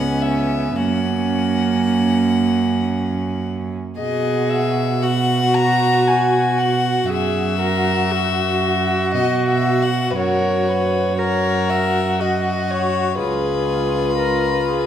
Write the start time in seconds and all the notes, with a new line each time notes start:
Already playing: C#2 B3 C#4 F#5
0.22 E5
0.76 F#2 A#3 C#4 F#5
3.99 B2 F#4 G#4 D#5
4.50 E5
5.02 F#4 F#5
5.55 A#5
6.08 G#5
6.58 F#5
7.09 F#2 F#4 G#4 E5
7.60 A#4
8.11 F#4
9.14 B2 F#4 D#5
9.49 E5
9.83 F#5
10.10 B4
10.17 F#2 F#4 A#4 C#5
10.68 B4
11.18 F#4 A#4 C#5
11.70 E5
12.20 F#4 D#5
12.70 C#5
13.18 C#2 F4 G#4 B4
14.18 A#4
14.68 G#4